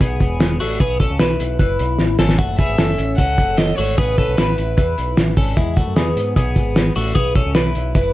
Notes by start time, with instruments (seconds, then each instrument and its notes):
0.01 picked electric bass B1, clean electric guitar B3 G#4, kick, closed hi-hat
0.20 picked electric bass E1, kick, closed hi-hat
0.40 snare, closed hi-hat
0.60 picked electric bass A1, clean electric guitar A3 F#4, open hi-hat
0.80 picked electric bass B1, clean electric guitar B3 G#4, kick, closed hi-hat
1.00 clean electric guitar C#4 A4, kick, closed hi-hat
1.10 picked electric bass C#2
1.19 picked electric bass B1, clean electric guitar E4 B4, snare, closed hi-hat
1.40 picked electric bass B1, closed hi-hat
1.59 picked electric bass F#1, clean electric guitar E4 B4, kick, closed hi-hat
1.79 picked electric bass B1, closed hi-hat
1.99 picked electric bass A1, snare
2.18 picked electric bass G#1, clean electric guitar C#4 A4, snare
2.29 snare
2.38 picked electric bass F#1, clean electric guitar A3 F#4, kick, closed hi-hat
2.58 clean electric guitar B3 G#4, violin E5, kick, closed hi-hat
2.68 picked electric bass G#1
2.78 picked electric bass F#1, clean electric guitar C#4 A4, snare, closed hi-hat
2.98 picked electric bass A1, closed hi-hat
3.18 picked electric bass C#2, clean electric guitar C#4 A4, violin F#5, kick, closed hi-hat
3.38 picked electric bass F#1, kick, closed hi-hat
3.58 violin D#5, snare, closed hi-hat
3.77 picked electric bass G#1, clean electric guitar A3 F#4, violin C#5, open hi-hat
3.98 picked electric bass A1, clean electric guitar B3 G#4, violin B4, kick, closed hi-hat
4.18 clean electric guitar C#4 A4, kick, closed hi-hat
4.28 picked electric bass B1
4.37 picked electric bass A1, clean electric guitar E4 B4, snare, closed hi-hat
4.58 picked electric bass A1, closed hi-hat
4.77 picked electric bass E2, clean electric guitar E4 B4, kick, closed hi-hat
4.98 picked electric bass B1, closed hi-hat
5.17 picked electric bass A1, snare, closed hi-hat
5.37 picked electric bass G#1, clean electric guitar C#4 A4, kick, open hi-hat
5.57 picked electric bass E2, clean electric guitar G#3 E4, kick, closed hi-hat
5.76 clean electric guitar A3 F#4, kick, closed hi-hat
5.87 picked electric bass F#2
5.96 picked electric bass E2, clean electric guitar B3 G#4, snare, closed hi-hat
6.16 picked electric bass G#2, closed hi-hat
6.36 picked electric bass B1, clean electric guitar B3 G#4, kick, closed hi-hat
6.56 picked electric bass G#1, kick, closed hi-hat
6.76 snare, closed hi-hat
6.95 picked electric bass A1, clean electric guitar A3 F#4, open hi-hat
7.15 picked electric bass B1, clean electric guitar B3 G#4, kick, closed hi-hat
7.35 clean electric guitar C#4 A4, kick, closed hi-hat
7.46 picked electric bass C#2
7.55 picked electric bass B1, clean electric guitar E4 B4, snare, closed hi-hat
7.75 picked electric bass B1, closed hi-hat
7.95 picked electric bass F#1, clean electric guitar E4 B4, kick, closed hi-hat